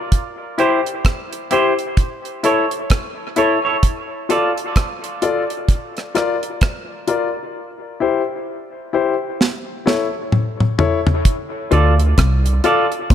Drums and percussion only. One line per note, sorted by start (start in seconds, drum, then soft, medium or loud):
0.12 kick loud
0.12 closed hi-hat medium
0.59 closed hi-hat medium
0.86 closed hi-hat soft
1.05 kick medium
1.05 cross-stick medium
1.05 closed hi-hat medium
1.33 closed hi-hat medium
1.51 closed hi-hat medium
1.79 closed hi-hat soft
1.97 kick loud
1.97 closed hi-hat medium
2.25 closed hi-hat soft
2.44 closed hi-hat medium
2.71 closed hi-hat soft
2.90 kick loud
2.90 cross-stick loud
2.90 closed hi-hat medium
3.36 closed hi-hat medium
3.83 kick loud
3.83 closed hi-hat medium
4.30 closed hi-hat medium
4.58 closed hi-hat soft
4.76 kick loud
4.76 cross-stick loud
4.76 closed hi-hat medium
5.04 closed hi-hat medium
5.22 closed hi-hat medium
5.50 closed hi-hat soft
5.69 kick loud
5.69 closed hi-hat medium
5.97 cross-stick medium
5.97 closed hi-hat soft
6.15 cross-stick medium
6.15 closed hi-hat medium
6.43 closed hi-hat soft
6.61 kick loud
6.61 cross-stick loud
6.61 closed hi-hat medium
7.08 closed hi-hat medium
9.41 snare medium
9.87 snare medium
10.32 mid tom medium
10.60 mid tom medium
10.79 floor tom medium
11.07 floor tom medium
11.25 kick loud
11.25 closed hi-hat loud
11.72 closed hi-hat medium
12.00 closed hi-hat soft
12.18 kick loud
12.18 cross-stick loud
12.18 closed hi-hat medium
12.46 closed hi-hat medium
12.64 closed hi-hat medium
12.92 closed hi-hat soft
13.10 kick loud
13.10 closed hi-hat medium